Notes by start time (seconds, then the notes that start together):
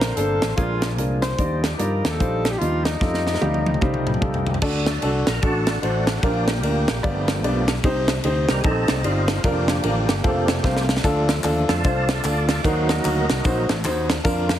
Already playing: A#1 A#2 D3 A#3 C4 A#4 C5
0.01 snare, closed hi-hat
0.16 G1 A#3 D4 A4 C5, closed hi-hat
0.42 A1, snare, closed hi-hat
0.56 A#1 A#2 F3 G#3 A#3 C#4 D4 F4 G#4 A#4, kick, closed hi-hat
0.62 D4
0.82 snare, closed hi-hat
0.98 C2 G#3 D4 F4 A#4, closed hi-hat
1.22 C5, snare, closed hi-hat
1.38 D#2 D#3 F3 G3 D4 D#4 F4 G4 D5, kick, closed hi-hat
1.64 snare, closed hi-hat
1.78 G2 G3 D#4 F4 A#4 D5, closed hi-hat
2.04 D#2, snare, closed hi-hat
2.11 A4
2.20 A#1 G3 D#4 F4 C5, kick, closed hi-hat
2.45 snare, closed hi-hat
2.52 G4
2.58 D#2 G3 D#4 F4 D#5, closed hi-hat
2.84 D#4, snare, closed hi-hat
3.00 F2 F3 G3 A3 D#4 F4 G4 A4, kick, snare
3.14 snare
3.27 snare
3.35 snare
3.41 D2 G3 D#4 F4 G4, high tom
3.54 high tom
3.66 high tom
3.74 mid tom
3.81 C2 G3 D#4 F4 C5, kick, mid tom
3.94 mid tom
4.07 mid tom
4.14 mid tom
4.21 C2 G3 D#4 F4 A4, kick, mid tom
4.34 floor tom
4.47 floor tom
4.54 floor tom
4.62 D2 D3 D4 F#4 A4, kick, crash
4.86 F#3 A3 D4, snare, ride
5.02 C2 D4 F#4 A4, ride
5.26 A#1 A#4, snare, ride
5.42 A1 D4 F#4 A4, kick, ride
5.67 snare, ride
5.81 A1 A3 D4 F#4 C5, ride
6.07 snare, ride
6.21 A#1 A#2 F3 A#3 D4 F4 G4 A#4, kick, ride
6.48 snare, ride
6.63 D2 D4 F4 A#4, ride
6.88 A#1, snare, ride
7.03 G1 G2 F3 A3 B3 D4 F4 G4 D5, kick, ride
7.28 snare, ride
7.44 B1 B3 D4 F4 G4 D5, ride
7.68 snare, ride
7.84 C2 C3 D#4 G4 C5, kick, ride
8.08 snare, ride
8.24 D2 D#4 G4 C5, ride
8.49 C2 D#3 G3 C4 A#4, snare, ride
8.61 A#1 C4 D#4 G4 G#4 A4, kick, ride
8.65 D#4
8.88 C2, snare, ride
9.04 G1 C4 D#4 F4 G4 D5, ride
9.28 snare, ride
9.44 F1 D3 F3 A#3 D4 F4 G4 A#4, kick, ride
9.68 snare, ride
9.83 A1 D4 F4 A#4, ride
10.09 G1, snare, ride
10.22 F1 C3 F3 A3 C4 F4 A4, kick, ride
10.48 snare, ride
10.64 C2 C4 F4 C5, kick, snare
10.77 snare
10.89 snare
10.97 snare
11.03 D2 D3 F3 A3 D4 F4 A4, kick, ride, tambourine
11.29 snare, ride, tambourine
11.44 D#2 D4 F4 A4, clap, ride, tambourine
11.69 F2 D3 F3 A3 D4 F4 A4, snare, ride, tambourine
11.84 C2 D4 F4 C5, kick, ride, tambourine
12.08 snare, ride, tambourine
12.24 D2 D4 F4 A4 D5, clap, ride, tambourine
12.49 snare, ride, tambourine
12.63 D#2 D#3 F#3 A#3 D#4 F#4 A#4 C5, kick, ride, tambourine
12.89 D#4 F#4 A#4, snare, ride, tambourine
13.05 D2 D#4 F#4 A#4, clap, ride, tambourine
13.30 C2, snare, ride, tambourine
13.44 A#1 D#3 F#3 A#3 D#4 F#4 C5, kick, ride, tambourine
13.69 A1, snare, ride, tambourine
13.84 D#2 D#4 F#4 C5, clap, ride, tambourine
14.10 snare, ride, tambourine
14.24 F2 D3 F3 A#3 D4 F4 A#4, kick, ride, tambourine
14.49 snare, ride, tambourine